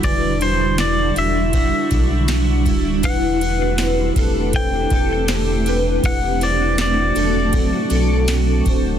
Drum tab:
RD |xxxxxxxx|xxxxxxxx|xxxxxxxx|
TB |--x---x-|--x---x-|--x---x-|
SD |--o---o-|--o---o-|--o---o-|
BD |o---oo-o|o--ooo--|o---o--o|